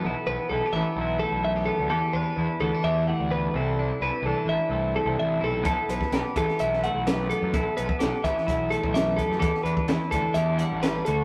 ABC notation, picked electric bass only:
X:1
M:4/4
L:1/16
Q:1/4=128
K:Bphr
V:1 name="Picked electric bass" clef=bass
B,,, z B,,, z B,,, z A,,, z B,,,3 B,,,4 D,, | E,, z E,, z E,, z D,, z E,,3 D,,3 C,,2- | C,,2 C,, z C,, z A,,, z C,,3 C,, A,,,2 B,,,2 | B,,, z B,,, z B,,, z A,,, z B,,,3 B,,,4 F,, |
B,,, z B,,, z B,,, z A,,, z B,,,3 B,,,4 F,, | E,, z E,, z E,, z D,, z E,,3 A,,,3 D,,2 |]